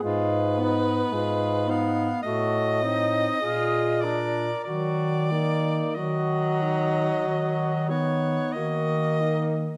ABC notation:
X:1
M:4/4
L:1/8
Q:1/4=48
K:Ebm
V:1 name="Soprano saxophone"
c3 f e3 =d | =d2 e3 _d e2 |]
V:2 name="Alto saxophone"
F E F E ^F E A B | G E G E G E G E |]
V:3 name="Tenor saxophone"
A, C A, C =A, =C F =D | G, B, G,3 C B,2 |]
V:4 name="Bass clarinet" clef=bass
A,,2 A,,2 =A,,2 B,,2 | E,2 E,2 E,2 E,2 |]